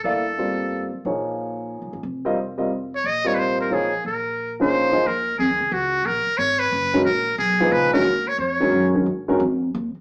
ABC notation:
X:1
M:3/4
L:1/16
Q:"Swing" 1/4=179
K:Bblyd
V:1 name="Muted trumpet"
A8- A2 z2 | z12 | z8 z2 _d2 | _e2 _d3/2 =B/2 c2 _B2 _A4 |
B6 c6 | [K:Ebm] B4 A4 G4 | B4 d2 c6 | B4 A4 c2 B2- |
B2 d2 d6 z2 | z12 |]
V:2 name="Grand piano"
[B,EAdf]2 z2 [G,B,CFd]6 z2 | [F,B,_E_A_d]8- [F,B,EAd]2 z2 | z2 [G,CFB_e]2 z2 [G,CFBe]2 z4 | z2 [G,CFB_e]6 [F,B,_E_A_d]2 z2 |
z6 [F,B,_D_E_A]4 [F,B,EA_e]2 | [K:Ebm] z12 | z8 z2 [E,A,DGB]2 | z6 [B,,F,EAc]4 [E,A,DGd]2 |
z6 [E,A,DGB]4 [E,A,DGB]2 | z2 [E,A,DGB]2 z8 |]
V:3 name="Upright bass" clef=bass
G,,,8- G,,,2 z2 | B,,,8- (3B,,,2 C,,2 A,,,2 | F,,,12 | B,,,12 |
B,,,12 | [K:Ebm] E,,4 (3F,,2 E,,2 D,,2 D,,4 | B,,,2 z2 A,,,4 G,,,4 | B,,,4 C,,4 D,,2 z2 |
E,,4 F,,4 G,,4 | A,,4 F,,4 E,,2 z2 |]